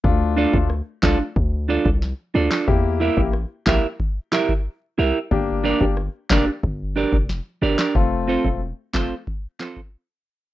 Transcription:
<<
  \new Staff \with { instrumentName = "Clean electric guitar" } { \time 4/4 \key d \minor \tempo 4 = 91 r8 <d' f' a' d''>16 r8. <d' f' a' d''>16 r8. <d' f' a' d''>16 r8. <d' f' a' d''>16 <d' f' a' d''>16 | r8 <e' g' bes' e''>16 r8. <e' g' bes' e''>16 r8. <e' g' bes' e''>16 r8. <e' g' bes' e''>16 r16 | r8 <d' g' bes' d''>16 r8. <d' g' bes' d''>16 r8. <d' g' bes' d''>16 r8. <d' g' bes' d''>16 <d' g' bes' d''>16 | r8 <c' f' a' c''>16 r8. <c' f' a' c''>16 r8. <c' f' a' c''>16 r4 r16 | }
  \new Staff \with { instrumentName = "Grand piano" } { \time 4/4 \key d \minor <a d' f'>8. <a d' f'>16 r8 <a d' f'>16 r2 r16 | <bes e' g'>8. <bes e' g'>16 r8 <bes e' g'>16 r2 r16 | <bes d' g'>8. <bes d' g'>16 r8 <bes d' g'>16 r2 r16 | <a c' f'>8. <a c' f'>16 r8 <a c' f'>16 r2 r16 | }
  \new Staff \with { instrumentName = "808-style bass" } { \clef bass \time 4/4 \key d \minor d,8. d,8 r16 c,16 r16 d,8. c,8 r16 d,16 r16 | e,8. a,,8 r16 bes,,16 r4. r16 c,16 r16 | g,,8. g,,8 r16 f,,16 r16 g,,8. f,,8 r16 g,,16 r16 | f,,8. e,,8 r16 f,,16 r2 r16 | }
  \new DrumStaff \with { instrumentName = "Drums" } \drummode { \time 4/4 bd8. bd16 ss8 <hc bd sn>8 bd8. bd16 sn8. <hc sn>16 | bd8. bd16 ss8 <hc bd sn>8 bd8 <hc sn>16 bd16 r4 | bd8. bd16 ss8 <hc bd sn>8 bd8. bd16 sn8. <hc sn>16 | bd8. bd16 r8 <hc bd sn>8 bd8 <hc sn>16 bd16 r4 | }
>>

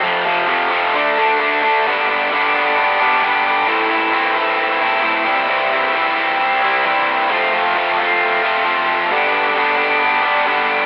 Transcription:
\new Staff \with { instrumentName = "Distorted electric guitar" } { \time 4/4 \key g \major \tempo 4 = 133 <f, c f>8 <f, c f>8 <f, c f>8 <f, c f>8 <d a d'>8 <d a d'>8 <d a d'>8 <d a d'>8 | <g, d g b d'>8 <g b d'>8 <d g b d'>8 <g b d'>4 <g b d'>8 <g, d g b d'>4 | <a, e a c' e'>8 <a c' e'>8 <e a c' e'>8 <a c' e'>4 <a c' e'>8 <a, e a c' e'>8 <c e g c' e'>8 | <c e g c' e'>8 <g c' e'>8 <e g c' e'>8 <g c' e'>4 <g c' e'>8 <c e g c' e'>4 |
<f a c' f'>8 <a c' f'>8 <f a c' f'>8 <a c' f'>4 <a c' f'>8 <f a c' f'>4 | <g, d g b d'>8 <g b d'>8 <d g b d'>8 <g b d'>4 <g b d'>8 <g, d g b d'>4 | }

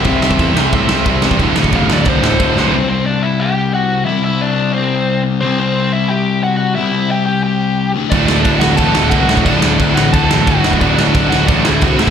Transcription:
<<
  \new Staff \with { instrumentName = "Lead electric guitar" } { \time 4/4 \key c \lydian \tempo 4 = 178 e''8 e''4. e''4 r4 | r4 f''8 d''8 c''4. c''8 | <c' c''>8 <c' c''>8 <d' d''>8 <e' e''>8 <g' g''>4 <fis' fis''>4 | <e' e''>8 <e' e''>8 <d' d''>4 <c' c''>4. r8 |
<c' c''>8 <c' c''>4 <e' e''>8 <g' g''>4 <fis' fis''>8 <fis' fis''>8 | <e' e''>4 <g' g''>8 <g' g''>8 <g' g''>4. r8 | <d' d''>8 <d' d''>4 <fis' fis''>8 <a' a''>4 <fis' fis''>4 | <d' d''>8 <d' d''>4 <fis' fis''>8 <a' a''>4 <fis' fis''>4 |
<d' d''>8 <d' d''>4 <fis' fis''>8 <d' d''>8 <e' e''>8 <fis' fis''>8 <e' e''>8 | }
  \new Staff \with { instrumentName = "Overdriven electric guitar" } { \clef bass \time 4/4 \key c \lydian <c g c'>8 <c g c'>8 <c g c'>8 <c g c'>8 <c g c'>8 <c g c'>8 <c g c'>8 <c g c'>8 | <d, a, d>8 <d, a, d>8 <d, a, d>8 <d, a, d>8 <d, a, d>8 <d, a, d>8 <d, a, d>8 <d, a, d>8 | r1 | r1 |
r1 | r1 | <d, a, d a fis'>2 <d, a, d a fis'>2 | <d, a, d a fis'>2 <d, a, d a fis'>2 |
<d, a, d a fis'>2 <d, a, d a fis'>2 | }
  \new Staff \with { instrumentName = "Distorted electric guitar" } { \clef bass \time 4/4 \key c \lydian <c g c'>8 <c g c'>8 <c g c'>8 <c g c'>8 <c g c'>8 <c g c'>8 <c g c'>8 <c g c'>8 | <d, a, d>8 <d, a, d>8 <d, a, d>8 <d, a, d>8 <d, a, d>8 <d, a, d>8 <d, a, d>8 <d, a, d>8 | <c g c'>1 | <c g c'>1 |
<c g c'>1 | <c g c'>2.~ <c g c'>8 <d, a, d>8~ | <d, a, d>2.~ <d, a, d>8 <d, a, d>8~ | <d, a, d>2.~ <d, a, d>8 <d, a, d>8~ |
<d, a, d>2.~ <d, a, d>8 <d, a, d>8 | }
  \new Staff \with { instrumentName = "Distorted electric guitar" } { \clef bass \time 4/4 \key c \lydian <c g c'>8 <c g c'>8 <c g c'>8 <c g c'>8 <c g c'>8 <c g c'>8 <c g c'>8 <c g c'>8 | <d, a, d>8 <d, a, d>8 <d, a, d>8 <d, a, d>8 <d, a, d>8 <d, a, d>8 <d, a, d>8 <d, a, d>8 | r1 | r1 |
r1 | r1 | <d, a, d>4 <d, a, d>8 <d, a, d>8 <d, a, d>4 <d, a, d>8 <d, a, d>8 | <d, a, d>4 <d, a, d>8 <d, a, d>8 <d, a, d>4 <d, a, d>8 <d, a, d>8 |
<d, a, d>4 <d, a, d>8 <d, a, d>8 <d, a, d>4 <d, a, d>8 <d, a, d>8 | }
  \new Staff \with { instrumentName = "Picked electric bass" } { \clef bass \time 4/4 \key c \lydian c,8 c,8 e,8 c,8 a,8 c,8 c,8 e,8 | d,,8 d,,8 fis,,8 d,,8 c,8 d,,8 d,,8 b,,8 | r1 | r1 |
r1 | r1 | d,,8 d,,8 d,,8 d,,8 a,,8 d,,8 c,8 d,,8 | d,,8 d,,8 d,8 a,,8 d,,8 a,,8 g,,8 d,,8 |
d,,8 d,,8 d,,8 d,,8 a,,8 d,,8 c,8 d,,8 | }
  \new DrumStaff \with { instrumentName = "Drums" } \drummode { \time 4/4 <bd cymr>8 sn16 bd16 <bd cymr>8 sn8 <bd cymr>8 sn8 <bd cymr>8 sn16 bd16 | <bd cymr>8 sn16 bd16 <bd cymr>8 sn8 <bd cymr>8 sn8 <bd cymr>8 sn8 | r4 r4 r4 r4 | r4 r4 r4 r4 |
r4 r4 r4 r4 | r4 r4 r4 r4 | <cymc bd>8 sn8 <cymc bd>8 sn8 <cymc bd>8 sn8 <cymc bd>8 sn16 bd16 | <cymc bd>8 sn8 <cymc bd>8 sn8 <cymc bd>8 sn8 <cymc bd>8 sn16 bd16 |
<cymc bd>8 sn8 <cymc bd>8 sn8 <cymc bd>8 sn8 <cymc bd>8 sn8 | }
>>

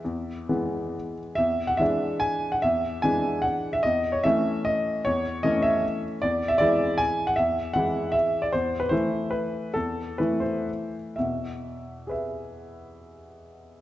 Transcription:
<<
  \new Staff \with { instrumentName = "Grand piano" } { \time 3/4 \key e \major \tempo 4 = 145 << { <b' e''>2~ <b' e''>8 r8 | e''8. fis''16 e''4 gis''8. fis''16 | e''4 gis''4 fis''8. e''16 | dis''8. cis''16 e''4 dis''4 |
cis''4 dis''8 e''4 r8 | d''8. e''16 d''4 gis''8. fis''16 | e''4 fis''4 e''8. d''16 | c''8. b'16 c''4 b'4 |
a'4 b'8 c''4 r8 | e''2.~ | e''2. | } \\ { r2. | r2. | r2. | r2. |
r2. | r2. | r2. | r2. |
r2. | r2 <gis' b' e''>4~ | <gis' b' e''>2. | } >> }
  \new Staff \with { instrumentName = "Grand piano" } { \clef bass \time 3/4 \key e \major e,4 <e gis b>2 | e,4 <e gis d'>2 | e,4 <e gis d'>2 | e,4 <e a cis'>2 |
e,4 <e a cis'>2 | e,4 <e gis e'>2 | e,4 <e gis e'>2 | e,4 <e a e'>2 |
e,4 <e a e'>2 | <e, b,>2.~ | <e, b,>2. | }
>>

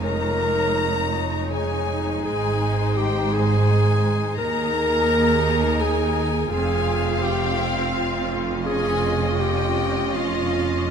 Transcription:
<<
  \new Staff \with { instrumentName = "Violin section" } { \time 3/4 \key des \lydian \tempo 4 = 84 bes''2 aes''4 | aes''4 g''8 aes''4. | bes''2 aes''4 | aes''4 g''4 f''8 r8 |
aes''4 g''4 f''4 | }
  \new Staff \with { instrumentName = "Violin section" } { \time 3/4 \key des \lydian des''2. | c''2. | bes'2. | f''2. |
ees''2. | }
  \new Staff \with { instrumentName = "Clarinet" } { \time 3/4 \key des \lydian bes'4. r8 aes'4 | aes'4 g'8 aes'4. | bes'2 aes'4 | aes'4 g'8 r8 f'8 r8 |
aes'4 g'4 f'4 | }
  \new Staff \with { instrumentName = "Viola section" } { \time 3/4 \key des \lydian << { aes2.~ | aes2. | aes'2. | f'2.~ |
f'2. | } \\ { ees'2.~ | ees'2. | ees'2. | c'2. |
des'2. | } >> }
  \new Staff \with { instrumentName = "Cello section" } { \clef bass \time 3/4 \key des \lydian f,2. | aes,2. | ees,2. | f,2.~ |
f,2. | }
  \new Staff \with { instrumentName = "Double bass section" } { \clef bass \time 3/4 \key des \lydian f,,2. | aes,,2. | ees,2. | f,,2.~ |
f,,2. | }
>>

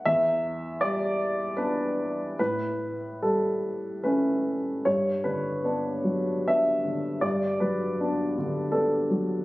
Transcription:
<<
  \new Staff \with { instrumentName = "Grand piano" } { \time 3/4 \key g \lydian \tempo 4 = 76 e''4 d''4 b'4 | b'4 a'4 b'4 | cis''8 b'4. e''4 | d''8 b'4 r8 a'4 | }
  \new Staff \with { instrumentName = "Grand piano" } { \clef bass \time 3/4 \key g \lydian e,4 g4 <b d'>4 | a,4 g4 <a cis'>4 | g,8 d8 <b d'>8 fis8 <b d'>8 d8 | g,8 fis8 <b d'>8 d8 <b d'>8 fis8 | }
>>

